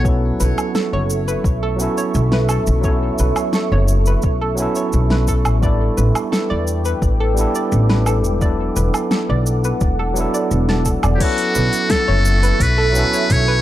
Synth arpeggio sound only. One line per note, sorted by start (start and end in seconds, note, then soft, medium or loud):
0.05 0.22 C#5 medium
0.40 0.50 B4 medium
0.75 0.91 A4 medium
0.93 1.09 C#5 loud
1.28 1.43 B4 medium
1.63 1.78 A4 loud
1.98 2.14 C#5 medium
2.33 2.48 B4 loud
2.50 2.59 A4 loud
2.85 3.01 C#5 medium
3.20 3.29 B4 medium
3.55 3.70 A4 medium
3.72 3.88 C#5 loud
4.07 4.22 B4 loud
4.41 4.57 A4 medium
4.77 4.93 C#5 medium
5.11 5.27 B4 loud
5.28 5.38 A4 loud
5.63 5.80 D5 medium
5.97 6.07 B4 medium
6.32 6.49 A4 loud
6.50 6.67 D5 loud
6.85 7.01 B4 loud
7.20 7.36 A4 loud
7.55 7.72 D5 medium
7.90 8.05 B4 loud
8.07 8.17 A4 medium
8.42 8.59 D5 medium
8.76 8.86 B4 medium
9.11 9.28 A4 medium
9.29 9.46 D5 loud
9.65 9.80 B4 medium
9.99 10.15 A4 loud
10.34 10.50 D5 medium
10.69 10.78 A5 medium
10.86 10.96 A4 medium
11.04 11.19 D5 medium
11.20 11.38 C#5 medium
11.55 11.65 B4 medium
11.90 12.06 A4 medium
12.08 12.24 C#5 loud
12.43 12.59 B4 loud
12.78 12.93 A4 loud
13.14 13.30 C#5 medium
13.48 13.62 B4 loud